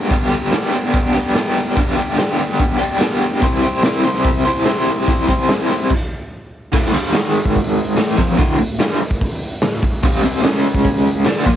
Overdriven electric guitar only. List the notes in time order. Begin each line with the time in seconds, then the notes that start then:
Already playing: B3 D4 G4
0.08 G2 D3 G3 B3 D4
0.12 G4
0.29 B3 D4 G4
0.34 G3
0.51 G2 D3 G3 B3 D4 G4
0.71 B3 D4 G4
0.76 G3
1.13 G3 B3 D4 G4
1.35 G3 B3 D4 G4
1.75 G2 D3 G3 B3 D4 G4
1.96 G3 B3 D4 G4
2.15 G2 D3 G3 B3 D4 G4
2.37 G3 B3 D4 G4
2.78 G3 B3 D4 G4
2.98 G3 B3 D4 G4
3.40 C3 G3 C4 E4 G4 C5
3.62 C4 E4 G4 C5
3.83 C3 G3 C4 E4 G4
3.87 C5
4.04 E4 G4 C5
4.08 C4
4.45 C4 E4 G4 C5
4.65 C4 E4 G4
4.70 C5
5.07 C3 G3 C4 E4 G4 C5
5.27 C4 E4 G4 C5
5.49 C3 G3 C4 E4 G4 C5
5.69 C4 E4 G4 C5
6.72 D2 A2 D3
6.92 G2 D3 G3
7.12 G#2 D#3 G#3
7.95 A2 E3 A3
8.17 F2 C3 F3
8.36 D2 A2 D3
8.58 D2 A2
8.79 G2 D3 G3
9.62 D2 A2
9.84 muted overdriven electric guitar stroke
10.03 G2 D3 G3
10.22 C3 G3 C4
10.42 C#3 G#3 C#4
11.24 D3 A3 D4
11.45 A#2 F3 A#3